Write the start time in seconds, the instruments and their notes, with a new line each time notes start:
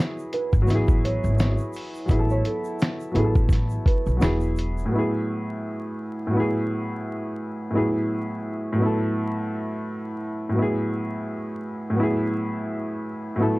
Already playing: upright piano F#3 B3 E4 G#4
0.00 snare
0.18 shaker
0.33 felt piano B4, closed hi-hat
0.53 upright bass G#1, kick, shaker
0.62 upright piano F#3
0.66 upright bass A1, upright piano B3, shaker
0.70 upright piano E4, snare, closed hi-hat
0.75 upright piano G#4
0.88 kick, shaker
1.05 felt piano C#5, closed hi-hat
1.24 upright bass G#1, shaker
1.39 snare, closed hi-hat, shaker
1.58 shaker
1.73 open hi-hat, shaker
1.95 shaker
2.06 upright bass A1, upright piano F#3 B3, kick, shaker
2.10 upright piano E4 G#4, closed hi-hat
2.19 upright piano A4
2.29 felt piano C#5, shaker
2.45 felt piano A4, closed hi-hat
2.64 shaker
2.80 snare, closed hi-hat, shaker
3.00 shaker
3.11 upright bass A1, upright piano F#3 B3
3.16 upright piano E4 G#4, felt piano A4, closed hi-hat
3.24 upright piano A4
3.35 kick, shaker
3.49 kick, snare, closed hi-hat, shaker
3.70 shaker
3.86 felt piano B4, kick, closed hi-hat
4.06 upright bass B1, shaker
4.17 upright piano F#3 B3
4.21 upright bass E1, upright piano E4 G#4, snare, closed hi-hat, shaker
4.40 shaker
4.56 closed hi-hat, shaker
4.78 shaker
4.86 upright piano A2 F#3
4.92 upright piano B3 E4
4.98 upright piano G#4
6.27 upright piano A2 F#3
6.33 upright piano B3 E4
6.40 upright piano G#4
7.71 upright piano A2 F#3 B3
7.75 upright piano E4 G#4
8.72 upright piano A2 F#3
8.79 upright piano B3 E4
8.85 upright piano A4
10.49 upright piano A2 F#3
10.56 upright piano B3 E4
10.62 upright piano G#4
11.90 upright piano A2 F#3
11.96 upright piano B3 E4
12.03 upright piano G#4
13.36 upright piano A2 F#3 B3
13.41 upright piano E4 A4